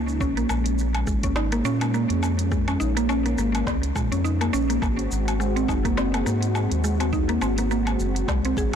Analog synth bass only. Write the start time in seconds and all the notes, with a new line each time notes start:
Already playing: C#2
0.20 A#1
0.50 A#1
1.07 G#1
1.65 A#2
2.10 F2
2.81 A#1
3.38 G#1
3.67 C#2
3.96 A#2
4.12 F2
4.54 A#1
4.82 G#1
5.12 G#1
5.68 F#1
6.27 G#2
6.72 D#2
7.42 G#1
7.99 F#1
8.28 C2
8.57 G#1